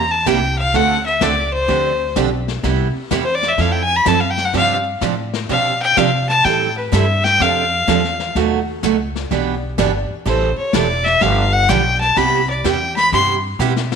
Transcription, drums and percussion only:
0.26 kick, snare, hi-hat pedal
0.74 brush sweep, kick, snare
1.21 kick, snare, hi-hat pedal
1.69 brush sweep, kick, snare
2.16 kick, snare, hi-hat pedal
2.48 snare
2.63 brush sweep, kick, snare
3.11 kick, snare, hi-hat pedal
3.42 snare
3.58 brush sweep, kick, snare
4.06 kick, snare, hi-hat pedal
4.37 snare
4.53 brush sweep, kick, snare
5.01 kick, snare, hi-hat pedal
5.33 snare
5.49 brush sweep, kick, snare
5.97 kick, snare, hi-hat pedal
6.29 snare
6.45 brush sweep, kick, snare
6.92 kick, snare, hi-hat pedal
7.25 snare
7.40 brush sweep, kick, snare
7.88 kick, snare, hi-hat pedal
8.04 snare
8.20 snare
8.35 brush sweep, kick, snare
8.83 kick, snare, hi-hat pedal
9.16 snare
9.31 brush sweep, kick, snare
9.78 kick, snare, hi-hat pedal
10.26 brush sweep, kick, snare
10.73 kick, snare, hi-hat pedal
11.06 snare
11.21 brush sweep, kick, snare
11.69 kick, snare, hi-hat pedal
12.01 snare
12.17 brush sweep, kick, snare
12.64 kick, snare, hi-hat pedal
12.97 snare
13.12 brush sweep, kick, snare
13.60 hi-hat pedal
13.76 snare
13.92 snare

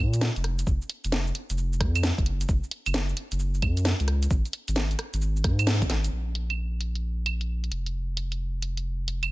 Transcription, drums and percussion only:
0.14 closed hi-hat, cabasa
0.21 snare, cabasa
0.36 closed hi-hat, cabasa
0.44 cross-stick, open hi-hat
0.59 closed hi-hat, cabasa
0.67 kick, cabasa
0.82 cabasa
0.90 open hi-hat
1.04 closed hi-hat, cabasa
1.12 snare, cabasa
1.27 cabasa
1.35 open hi-hat
1.50 closed hi-hat, cabasa
1.58 cabasa
1.73 cabasa
1.81 kick, cross-stick, open hi-hat
1.96 closed hi-hat, cabasa, claves
2.03 snare, cabasa
2.18 kick, closed hi-hat, cabasa
2.26 open hi-hat
2.41 closed hi-hat, cabasa
2.49 kick, cabasa
2.64 cabasa
2.71 open hi-hat
2.86 closed hi-hat, cabasa, claves
2.94 snare, cabasa
3.09 cabasa
3.17 open hi-hat
3.32 closed hi-hat, cabasa
3.40 cabasa
3.54 cabasa
3.62 kick, open hi-hat, claves
3.77 closed hi-hat, cabasa
3.85 snare, cabasa
4.00 closed hi-hat, cabasa
4.08 cross-stick, open hi-hat
4.23 closed hi-hat, cabasa
4.31 kick, cabasa
4.45 closed hi-hat, cabasa
4.53 open hi-hat
4.68 closed hi-hat, cabasa
4.76 snare, cabasa
4.91 closed hi-hat, cabasa
4.99 cross-stick, open hi-hat
5.14 closed hi-hat, cabasa
5.22 cabasa
5.36 cabasa
5.44 kick, cross-stick, open hi-hat
5.59 closed hi-hat, cabasa, claves
5.67 snare, cabasa
5.82 kick, closed hi-hat, cabasa
5.90 snare, open hi-hat
6.04 closed hi-hat, cabasa
6.35 open hi-hat
6.50 closed hi-hat, claves
6.81 open hi-hat
6.95 closed hi-hat
7.26 open hi-hat, claves
7.41 closed hi-hat
7.64 closed hi-hat
7.72 open hi-hat
7.86 closed hi-hat
8.17 open hi-hat
8.32 closed hi-hat
8.62 open hi-hat
8.77 closed hi-hat
9.08 open hi-hat
9.23 closed hi-hat, claves

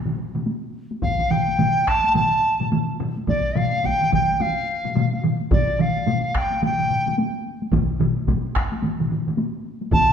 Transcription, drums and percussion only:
0.06 taiko low-mid, taiko mid
0.18 taiko low-mid, taiko mid
0.35 taiko low-mid, taiko mid, taiko high
0.46 taiko high
0.91 taiko high
1.02 taiko, taiko low-mid, taiko mid, taiko high
1.19 taiko low-mid, taiko mid
1.31 taiko low-mid, taiko mid
1.48 taiko high
1.59 taiko low-mid, taiko mid, taiko high
1.87 taiko rim, taiko
2.04 taiko high
2.15 taiko low-mid, taiko mid, taiko high
2.60 taiko low-mid, taiko mid, taiko high
2.72 taiko low-mid, taiko mid, taiko high
3.00 taiko low-mid, taiko mid
3.16 taiko high
3.27 taiko, taiko low-mid, taiko mid, taiko high
3.55 taiko low-mid, taiko mid
3.73 taiko high
3.84 taiko, taiko low-mid, taiko mid, taiko high
4.01 taiko low-mid, taiko mid
4.12 taiko, taiko low-mid, taiko mid
4.29 taiko high
4.40 taiko low-mid, taiko mid, taiko high
4.84 taiko low-mid, taiko mid, taiko high
4.95 taiko low-mid, taiko mid, taiko high
5.13 taiko high
5.24 taiko low-mid, taiko mid
5.41 taiko high
5.51 taiko, taiko low-mid, taiko mid, taiko high
5.79 taiko low-mid, taiko mid
5.96 taiko high
6.07 taiko low-mid, taiko mid, taiko high
6.35 taiko rim, taiko
6.52 taiko high
6.62 taiko low-mid, taiko mid, taiko high
6.79 taiko low-mid, taiko mid
6.90 taiko low-mid, taiko mid
7.06 taiko low-mid, taiko mid, taiko high
7.18 taiko high
7.62 taiko high
7.72 taiko, taiko low-mid, taiko mid, taiko high
8.00 taiko low-mid, taiko mid
8.17 taiko high
8.28 taiko, taiko low-mid, taiko mid, taiko high
8.55 taiko rim, taiko
8.72 taiko high
8.82 taiko low-mid, taiko mid, taiko high
9.00 taiko low-mid, taiko mid
9.11 taiko low-mid, taiko mid
9.27 taiko low-mid, taiko mid, taiko high
9.37 taiko high
9.81 taiko high
9.92 taiko, taiko low-mid, taiko mid, taiko high
10.08 taiko low-mid, taiko mid

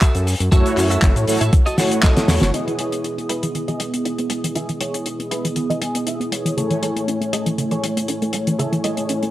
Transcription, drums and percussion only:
0.01 kick, clap, closed hi-hat, shaker
0.15 closed hi-hat, shaker
0.27 open hi-hat, shaker
0.40 closed hi-hat, shaker
0.52 kick, closed hi-hat, shaker
0.66 closed hi-hat, shaker
0.77 clap, open hi-hat, shaker
0.90 closed hi-hat, shaker
1.02 kick, clap, closed hi-hat, shaker
1.16 closed hi-hat, shaker
1.27 open hi-hat, shaker
1.41 closed hi-hat, shaker
1.53 kick, closed hi-hat, shaker
1.67 closed hi-hat, shaker
1.78 snare, open hi-hat, shaker
1.91 closed hi-hat, shaker
2.03 kick, snare, clap, closed hi-hat, shaker
2.17 snare, closed hi-hat, shaker
2.28 snare, open hi-hat, shaker
2.42 snare, closed hi-hat, shaker
2.54 closed hi-hat
2.68 closed hi-hat
2.79 closed hi-hat
2.92 closed hi-hat
3.04 closed hi-hat
3.18 closed hi-hat
3.29 closed hi-hat
3.43 closed hi-hat
3.55 closed hi-hat
3.68 closed hi-hat
3.80 closed hi-hat
3.94 closed hi-hat
4.05 closed hi-hat
4.18 closed hi-hat
4.30 closed hi-hat
4.44 closed hi-hat
4.55 closed hi-hat
4.69 closed hi-hat
4.81 closed hi-hat
4.94 closed hi-hat
5.06 closed hi-hat
5.20 closed hi-hat
5.31 closed hi-hat
5.45 closed hi-hat
5.56 closed hi-hat
5.70 closed hi-hat
5.82 closed hi-hat
5.95 closed hi-hat
6.07 closed hi-hat
6.21 closed hi-hat
6.32 closed hi-hat
6.46 closed hi-hat
6.58 closed hi-hat
6.71 closed hi-hat
6.83 closed hi-hat
6.97 closed hi-hat
7.08 closed hi-hat
7.22 closed hi-hat
7.33 closed hi-hat
7.46 closed hi-hat
7.58 closed hi-hat
7.71 closed hi-hat
7.84 closed hi-hat
7.97 closed hi-hat
8.08 closed hi-hat
8.22 closed hi-hat
8.33 closed hi-hat
8.47 closed hi-hat
8.59 closed hi-hat
8.73 closed hi-hat
8.84 closed hi-hat
8.97 closed hi-hat
9.09 closed hi-hat
9.23 closed hi-hat

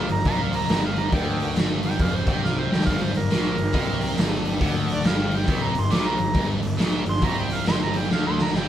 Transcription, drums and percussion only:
0.09 open hi-hat
0.19 snare
0.25 kick, open hi-hat
0.53 open hi-hat
0.69 snare, open hi-hat
0.96 open hi-hat
1.12 kick, open hi-hat
1.40 open hi-hat
1.56 snare, open hi-hat
1.83 open hi-hat
1.99 kick, open hi-hat
2.27 kick, open hi-hat
2.45 snare
2.72 snare
2.81 snare
2.87 kick, open hi-hat
3.14 open hi-hat
3.31 snare, open hi-hat
3.58 open hi-hat
3.74 kick, open hi-hat
4.01 open hi-hat
4.18 snare, open hi-hat
4.33 snare
4.45 open hi-hat
4.61 kick, open hi-hat
4.88 open hi-hat
5.04 snare, open hi-hat
5.31 open hi-hat
5.41 snare
5.48 kick, open hi-hat
5.75 open hi-hat
5.91 snare, open hi-hat
6.18 open hi-hat
6.34 kick, open hi-hat
6.63 open hi-hat
6.79 snare, open hi-hat
7.06 open hi-hat
7.16 snare
7.22 kick, open hi-hat
7.50 open hi-hat
7.66 snare, open hi-hat
7.81 snare
7.93 open hi-hat
8.11 snare
8.38 snare
8.47 snare
8.54 snare

